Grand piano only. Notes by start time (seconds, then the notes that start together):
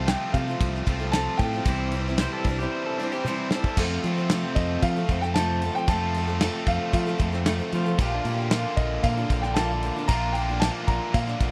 0.07 G5
0.33 F5
1.12 A5
1.37 G5
4.55 D#5
4.82 F5
5.21 G5
5.34 A5
5.75 G5
5.88 A5
6.68 F5
6.93 F5
8.77 D#5
9.03 F5
9.41 G5
9.54 A5
10.08 A#5
10.33 G5
10.60 A5
10.87 A#5
11.14 F5